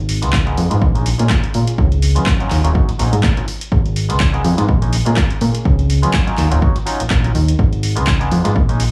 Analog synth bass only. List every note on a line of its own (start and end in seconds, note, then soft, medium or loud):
0.00 0.24 G#1 medium
0.23 0.53 C#2 medium
0.58 0.67 F2 medium
0.71 0.79 G#2 medium
0.82 1.13 A#1 medium
1.20 1.27 A#2 loud
1.55 1.64 A#2 medium
1.78 2.18 C#2 medium
2.17 2.46 F#2 loud
2.51 2.61 D#2 medium
2.65 2.72 D#1 medium
2.89 2.97 A#1 soft
3.00 3.09 A#1 loud
3.13 3.20 G#2 loud
3.24 3.33 A#2 medium
3.72 4.11 G#1 loud
4.09 4.40 C#2 loud
4.45 4.54 F2 medium
4.58 4.66 G#2 medium
4.69 5.00 A#1 medium
5.07 5.14 A#2 loud
5.41 5.51 A#2 medium
5.66 6.05 C#2 loud
6.03 6.33 F#2 medium
6.38 6.48 D#2 medium
6.52 6.59 D#1 medium
7.00 7.09 A#1 soft
7.11 7.29 A#1 loud
7.35 7.53 D#2 medium
7.59 7.98 G#1 loud
7.97 8.27 C#2 loud
8.32 8.41 F2 medium
8.45 8.53 G#2 medium
8.56 8.87 A#1 medium